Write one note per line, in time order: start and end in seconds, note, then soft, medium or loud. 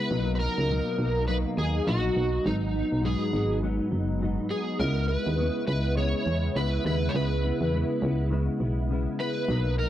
0.00 0.11 G#3 soft
0.00 0.12 B3 soft
0.00 2.42 B3 medium
0.00 0.11 E4 medium
0.00 0.31 B4 loud
0.10 0.49 B1 loud
0.10 0.40 B2 medium
0.10 0.41 F#3 medium
0.10 2.43 A#3 medium
0.10 0.41 A#3 medium
0.10 4.76 D#4 medium
0.10 0.39 D#4 medium
0.35 0.39 B4 medium
0.39 0.70 A#3 soft
0.39 0.70 D#4 soft
0.39 1.27 A#4 loud
0.43 0.69 F#3 soft
0.58 0.82 C#2 medium
0.68 0.98 B2 medium
0.68 0.99 F#3 medium
0.68 0.98 A#3 medium
0.68 0.96 D#4 medium
0.97 1.46 B1 loud
0.97 1.28 A#3 soft
0.97 1.27 D#4 soft
1.01 1.27 F#3 soft
1.27 1.57 B2 medium
1.27 1.58 F#3 medium
1.27 1.56 A#3 medium
1.27 1.54 D#4 medium
1.27 1.36 B4 medium
1.55 1.81 D#2 medium
1.55 1.86 F#3 soft
1.55 1.87 A#3 soft
1.55 1.86 D#4 soft
1.55 1.88 G#4 medium
1.85 2.11 A#1 loud
1.85 2.15 B2 soft
1.85 2.16 F#3 medium
1.85 2.16 A#3 medium
1.85 2.14 D#4 medium
1.85 2.48 F#4 medium
2.15 2.40 B1 medium
2.15 2.44 F#3 soft
2.15 2.46 A#3 soft
2.15 2.45 D#4 medium
2.44 2.83 G#1 loud
2.44 2.74 G#2 medium
2.44 2.75 F#3 medium
2.44 9.45 G#3 medium
2.44 2.75 B3 medium
2.44 3.06 D#4 medium
2.44 2.72 D#4 medium
2.44 4.77 F#4 medium
2.44 4.78 B4 medium
2.74 3.02 F#3 soft
2.74 3.03 B3 soft
2.74 3.04 D#4 medium
2.92 3.16 B1 medium
3.02 3.32 G#2 medium
3.02 3.33 F#3 medium
3.02 3.33 B3 medium
3.02 3.31 D#4 medium
3.02 3.59 G#4 medium
3.32 3.80 G#1 loud
3.32 3.62 F#3 soft
3.32 3.62 B3 soft
3.32 3.62 D#4 soft
3.62 3.92 G#2 medium
3.62 3.92 F#3 medium
3.62 3.91 B3 medium
3.62 3.89 D#4 medium
3.90 4.39 F#1 medium
3.90 4.20 F#3 soft
3.90 4.22 B3 soft
3.90 4.21 D#4 medium
4.20 4.50 G#2 medium
4.20 4.51 F#3 medium
4.20 4.50 B3 medium
4.20 4.48 D#4 medium
4.50 4.80 F#3 soft
4.50 4.80 B3 soft
4.50 4.80 D#4 medium
4.50 4.78 G#4 medium
4.79 5.17 C#2 loud
4.79 5.09 C#3 medium
4.79 9.46 C#3 medium
4.79 5.09 G#3 medium
4.79 9.89 B3 medium
4.79 5.09 B3 medium
4.79 9.46 E4 medium
4.79 5.07 E4 medium
4.79 5.08 A#4 loud
5.08 5.39 B3 soft
5.08 5.38 E4 medium
5.08 5.66 B4 medium
5.12 5.38 G#3 soft
5.26 5.50 D#2 medium
5.37 5.67 C#3 medium
5.37 5.68 G#3 medium
5.37 5.67 B3 medium
5.37 5.65 E4 medium
5.66 6.15 C#2 loud
5.66 5.96 G#3 soft
5.66 5.97 B3 soft
5.66 5.96 E4 soft
5.66 5.97 B4 medium
5.97 6.26 C#3 medium
5.97 6.27 G#3 medium
5.97 6.27 B3 medium
5.97 6.25 E4 medium
5.97 6.58 C#5 medium
6.26 6.50 E2 medium
6.26 6.57 B3 soft
6.26 6.56 E4 medium
6.30 6.55 G#3 soft
6.55 6.79 C#2 medium
6.55 6.85 C#3 medium
6.55 6.86 G#3 medium
6.55 6.86 B3 medium
6.55 6.85 B4 medium
6.59 6.83 E4 medium
6.85 7.09 D#2 medium
6.85 7.14 G#3 soft
6.85 7.15 B3 soft
6.85 7.14 E4 medium
6.85 7.10 B4 medium
7.09 7.15 C#5 medium
7.14 7.52 C#2 loud
7.14 7.44 C#3 medium
7.14 7.44 G#3 medium
7.14 7.44 B3 medium
7.14 7.42 E4 medium
7.14 8.28 B4 medium
7.43 7.73 G#3 soft
7.43 7.74 B3 soft
7.43 7.73 E4 soft
7.61 7.85 E2 medium
7.73 8.02 C#3 medium
7.73 8.03 G#3 medium
7.73 8.03 B3 medium
7.77 8.01 E4 medium
8.02 8.49 C#2 loud
8.02 8.30 G#3 soft
8.02 8.31 B3 medium
8.02 8.32 E4 medium
8.30 8.61 C#3 medium
8.30 8.61 G#3 medium
8.30 8.61 B3 medium
8.30 8.59 E4 medium
8.60 9.08 B1 medium
8.60 8.90 G#3 soft
8.60 8.91 B3 medium
8.60 8.90 E4 medium
8.90 9.20 C#3 medium
8.90 9.20 G#3 medium
8.90 9.20 B3 medium
8.90 9.17 E4 medium
9.19 9.49 G#3 soft
9.19 9.50 B3 soft
9.19 9.49 E4 medium
9.19 9.75 B4 loud
9.48 9.86 B1 loud
9.48 9.78 B2 medium
9.48 9.79 F#3 medium
9.48 9.89 A#3 medium
9.48 9.78 A#3 medium
9.48 9.89 D#4 medium
9.48 9.76 D#4 medium
9.77 9.89 F#3 soft
9.77 9.89 A#3 soft
9.77 9.89 D#4 soft
9.77 9.87 A#4 loud